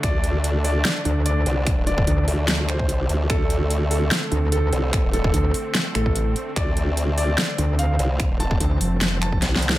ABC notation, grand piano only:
X:1
M:4/4
L:1/8
Q:"Swing 16ths" 1/4=147
K:Dphr
V:1 name="Grand piano"
d3 d3 d2- | d d4 c3 | A3 A3 A2- | A A4 A3 |
d3 d3 f2- | f a4 a3 |]